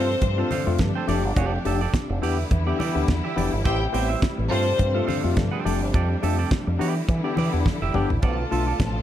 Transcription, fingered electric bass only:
0, 0, Header, 1, 2, 480
1, 0, Start_track
1, 0, Tempo, 571973
1, 1145, Time_signature, 4, 2, 24, 8
1, 7570, End_track
2, 0, Start_track
2, 0, Title_t, "Fingered electric bass"
2, 0, Program_c, 0, 33
2, 0, Note_on_c, 0, 43, 69
2, 116, Note_off_c, 0, 43, 0
2, 184, Note_on_c, 0, 43, 99
2, 354, Note_off_c, 0, 43, 0
2, 561, Note_on_c, 0, 41, 79
2, 635, Note_off_c, 0, 41, 0
2, 665, Note_on_c, 0, 43, 96
2, 760, Note_off_c, 0, 43, 0
2, 908, Note_on_c, 0, 29, 94
2, 1047, Note_off_c, 0, 29, 0
2, 1047, Note_on_c, 0, 31, 88
2, 1119, Note_off_c, 0, 31, 0
2, 1146, Note_on_c, 0, 29, 107
2, 1316, Note_off_c, 0, 29, 0
2, 1392, Note_on_c, 0, 29, 109
2, 1559, Note_off_c, 0, 29, 0
2, 1762, Note_on_c, 0, 29, 103
2, 1836, Note_off_c, 0, 29, 0
2, 1870, Note_on_c, 0, 40, 75
2, 2038, Note_off_c, 0, 40, 0
2, 2108, Note_on_c, 0, 40, 94
2, 2277, Note_off_c, 0, 40, 0
2, 2482, Note_on_c, 0, 38, 74
2, 2556, Note_off_c, 0, 38, 0
2, 2589, Note_on_c, 0, 40, 93
2, 2682, Note_off_c, 0, 40, 0
2, 2827, Note_on_c, 0, 28, 94
2, 2922, Note_off_c, 0, 28, 0
2, 2963, Note_on_c, 0, 31, 86
2, 3037, Note_off_c, 0, 31, 0
2, 3068, Note_on_c, 0, 33, 109
2, 3237, Note_off_c, 0, 33, 0
2, 3307, Note_on_c, 0, 33, 113
2, 3476, Note_off_c, 0, 33, 0
2, 3682, Note_on_c, 0, 33, 86
2, 3756, Note_off_c, 0, 33, 0
2, 3786, Note_on_c, 0, 43, 82
2, 3956, Note_off_c, 0, 43, 0
2, 4022, Note_on_c, 0, 43, 95
2, 4193, Note_off_c, 0, 43, 0
2, 4401, Note_on_c, 0, 41, 75
2, 4475, Note_off_c, 0, 41, 0
2, 4505, Note_on_c, 0, 43, 93
2, 4600, Note_off_c, 0, 43, 0
2, 4747, Note_on_c, 0, 29, 96
2, 4876, Note_off_c, 0, 29, 0
2, 4876, Note_on_c, 0, 31, 87
2, 4952, Note_off_c, 0, 31, 0
2, 4987, Note_on_c, 0, 41, 100
2, 5156, Note_off_c, 0, 41, 0
2, 5230, Note_on_c, 0, 41, 107
2, 5398, Note_off_c, 0, 41, 0
2, 5600, Note_on_c, 0, 41, 85
2, 5675, Note_off_c, 0, 41, 0
2, 5708, Note_on_c, 0, 52, 81
2, 5877, Note_off_c, 0, 52, 0
2, 5947, Note_on_c, 0, 52, 93
2, 6042, Note_off_c, 0, 52, 0
2, 6188, Note_on_c, 0, 52, 95
2, 6282, Note_off_c, 0, 52, 0
2, 6322, Note_on_c, 0, 40, 75
2, 6396, Note_off_c, 0, 40, 0
2, 6561, Note_on_c, 0, 29, 83
2, 6635, Note_off_c, 0, 29, 0
2, 6665, Note_on_c, 0, 31, 85
2, 6760, Note_off_c, 0, 31, 0
2, 6799, Note_on_c, 0, 33, 82
2, 6873, Note_off_c, 0, 33, 0
2, 6904, Note_on_c, 0, 35, 96
2, 7074, Note_off_c, 0, 35, 0
2, 7149, Note_on_c, 0, 35, 92
2, 7317, Note_off_c, 0, 35, 0
2, 7382, Note_on_c, 0, 33, 96
2, 7553, Note_off_c, 0, 33, 0
2, 7570, End_track
0, 0, End_of_file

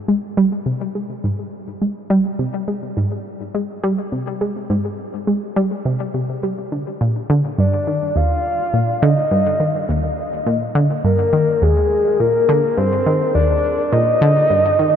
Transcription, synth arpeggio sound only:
0, 0, Header, 1, 2, 480
1, 0, Start_track
1, 0, Tempo, 576923
1, 70, Time_signature, 4, 2, 24, 8
1, 12447, End_track
2, 0, Start_track
2, 0, Title_t, "Synth arpeggio sound"
2, 0, Program_c, 0, 84
2, 69, Note_on_c, 0, 56, 82
2, 170, Note_off_c, 0, 56, 0
2, 310, Note_on_c, 0, 55, 94
2, 411, Note_off_c, 0, 55, 0
2, 549, Note_on_c, 0, 48, 75
2, 718, Note_off_c, 0, 48, 0
2, 792, Note_on_c, 0, 56, 69
2, 1019, Note_off_c, 0, 56, 0
2, 1031, Note_on_c, 0, 44, 74
2, 1199, Note_off_c, 0, 44, 0
2, 1511, Note_on_c, 0, 56, 72
2, 1611, Note_off_c, 0, 56, 0
2, 1748, Note_on_c, 0, 55, 98
2, 1850, Note_off_c, 0, 55, 0
2, 1989, Note_on_c, 0, 48, 80
2, 2158, Note_off_c, 0, 48, 0
2, 2228, Note_on_c, 0, 56, 74
2, 2457, Note_off_c, 0, 56, 0
2, 2470, Note_on_c, 0, 44, 77
2, 2638, Note_off_c, 0, 44, 0
2, 2950, Note_on_c, 0, 56, 78
2, 3051, Note_off_c, 0, 56, 0
2, 3191, Note_on_c, 0, 55, 99
2, 3291, Note_off_c, 0, 55, 0
2, 3430, Note_on_c, 0, 48, 71
2, 3598, Note_off_c, 0, 48, 0
2, 3670, Note_on_c, 0, 56, 79
2, 3898, Note_off_c, 0, 56, 0
2, 3909, Note_on_c, 0, 44, 86
2, 4078, Note_off_c, 0, 44, 0
2, 4388, Note_on_c, 0, 56, 75
2, 4490, Note_off_c, 0, 56, 0
2, 4629, Note_on_c, 0, 55, 94
2, 4730, Note_off_c, 0, 55, 0
2, 4871, Note_on_c, 0, 48, 80
2, 5039, Note_off_c, 0, 48, 0
2, 5110, Note_on_c, 0, 48, 71
2, 5278, Note_off_c, 0, 48, 0
2, 5352, Note_on_c, 0, 55, 73
2, 5519, Note_off_c, 0, 55, 0
2, 5591, Note_on_c, 0, 50, 74
2, 5692, Note_off_c, 0, 50, 0
2, 5832, Note_on_c, 0, 46, 85
2, 5999, Note_off_c, 0, 46, 0
2, 6072, Note_on_c, 0, 50, 93
2, 6172, Note_off_c, 0, 50, 0
2, 6310, Note_on_c, 0, 43, 75
2, 6478, Note_off_c, 0, 43, 0
2, 6549, Note_on_c, 0, 51, 70
2, 6777, Note_off_c, 0, 51, 0
2, 6787, Note_on_c, 0, 39, 76
2, 6957, Note_off_c, 0, 39, 0
2, 7268, Note_on_c, 0, 46, 72
2, 7437, Note_off_c, 0, 46, 0
2, 7508, Note_on_c, 0, 50, 104
2, 7610, Note_off_c, 0, 50, 0
2, 7748, Note_on_c, 0, 43, 82
2, 7917, Note_off_c, 0, 43, 0
2, 7986, Note_on_c, 0, 51, 76
2, 8216, Note_off_c, 0, 51, 0
2, 8227, Note_on_c, 0, 39, 74
2, 8397, Note_off_c, 0, 39, 0
2, 8706, Note_on_c, 0, 46, 83
2, 8876, Note_off_c, 0, 46, 0
2, 8945, Note_on_c, 0, 50, 97
2, 9049, Note_off_c, 0, 50, 0
2, 9187, Note_on_c, 0, 43, 77
2, 9357, Note_off_c, 0, 43, 0
2, 9425, Note_on_c, 0, 51, 80
2, 9656, Note_off_c, 0, 51, 0
2, 9668, Note_on_c, 0, 39, 88
2, 9837, Note_off_c, 0, 39, 0
2, 10149, Note_on_c, 0, 46, 72
2, 10318, Note_off_c, 0, 46, 0
2, 10391, Note_on_c, 0, 50, 92
2, 10491, Note_off_c, 0, 50, 0
2, 10629, Note_on_c, 0, 43, 76
2, 10798, Note_off_c, 0, 43, 0
2, 10869, Note_on_c, 0, 51, 73
2, 11097, Note_off_c, 0, 51, 0
2, 11108, Note_on_c, 0, 39, 73
2, 11277, Note_off_c, 0, 39, 0
2, 11586, Note_on_c, 0, 46, 83
2, 11756, Note_off_c, 0, 46, 0
2, 11827, Note_on_c, 0, 50, 101
2, 11929, Note_off_c, 0, 50, 0
2, 12066, Note_on_c, 0, 43, 73
2, 12236, Note_off_c, 0, 43, 0
2, 12305, Note_on_c, 0, 51, 75
2, 12447, Note_off_c, 0, 51, 0
2, 12447, End_track
0, 0, End_of_file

